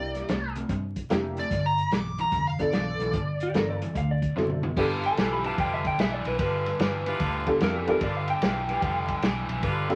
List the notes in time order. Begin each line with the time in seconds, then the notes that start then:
Already playing: C2 C3 G3 A#3 D4 E4 G4 D5
0.15 snare, closed hi-hat
0.29 C2 C3 A3, snare, closed hi-hat
0.56 C3 A3, closed hi-hat
0.69 G2 C3 G3, kick, closed hi-hat
0.96 kick, closed hi-hat
1.10 F1 C3 A3 A#3 D4 E4 G4, snare, closed hi-hat
1.37 C3 A3 D5, closed hi-hat
1.51 G1 G2 D3, kick, closed hi-hat
1.66 A#5
1.78 closed hi-hat
1.91 B1 G2 E3 D6, snare, closed hi-hat
2.18 G2 E3 A#5, closed hi-hat
2.32 F1 G2 D3, kick, closed hi-hat
2.47 F5
2.59 B3 D4 F4 A4 D5, kick, closed hi-hat
2.72 B1 G2 E3, snare, closed hi-hat
3.00 B1 G2 E3, closed hi-hat
3.13 G1 G2 D3, kick, closed hi-hat
3.40 G4, closed hi-hat
3.54 G1 G2 E3 B3 D4 F4 A4 A#4, snare, closed hi-hat
3.70 D5
3.82 G2 E3, closed hi-hat
3.95 D2 D3 A3 F5, kick, closed hi-hat
4.11 D5
4.22 kick, closed hi-hat
4.36 F#1 D3 B3 C4 E4 F#4 A4, snare
4.50 mid tom
4.63 D3 B3, floor tom
4.77 G1 G2 D3 B3 D4 F4 G4 A4 B4, kick, crash
5.03 A5, ride
5.17 B1 G2 E3 F4 G4 B4, snare, ride
5.33 B5
5.44 G2 E3 F4 G4 B4 A5, ride
5.58 F1 G2 D3 G5, kick, ride
5.74 E5
5.85 G5, kick, ride
5.98 B1 G2 E3 E5, snare, ride
6.14 D5
6.25 B1 G2 E3 B4, ride
6.39 G1 G2 D3 F4 G4 B4, kick, ride
6.66 snare, ride
6.79 G1 G2 E3 F4 G4 B4, snare, ride
7.06 G2 E3 F4 G4 B4, ride
7.19 D2 G2 D3, kick, ride
7.47 B3 D4 F4 G4 A4, kick, ride
7.61 F2 G2 E3 A#4, snare, ride
7.76 G4
7.87 G2 E3 B3 D4 F4 G4 A4 A#4, ride
8.01 G1 G2 D3 F4 G4 B4 D5, kick, ride
8.17 F5
8.28 G5, ride
8.42 B1 G2 E3 F4 G4 B4, snare, ride
8.69 G2 E3 F4 G4 B4, ride
8.82 F1 G2 D3, kick, ride
9.08 kick, ride
9.22 B1 G2 E3, snare, ride
9.48 B1 G2 E3, ride
9.63 G1 G2 D3 F4 G4 B4, kick, ride
9.89 B3 D4 F4 G4 A4, snare, ride